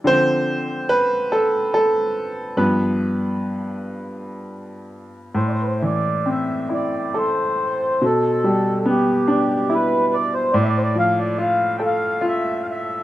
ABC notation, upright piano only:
X:1
M:3/4
L:1/8
Q:1/4=71
K:Am
V:1 name="Upright piano"
c2 B A A2 | B4 z2 | z6 | z6 |
z6 |]
V:2 name="Upright piano"
[D,F,C] z4 z | [G,,F,B,]6 | A,, E, C E A2 | B,, G, B, D E2 |
A,, F, F A F2 |]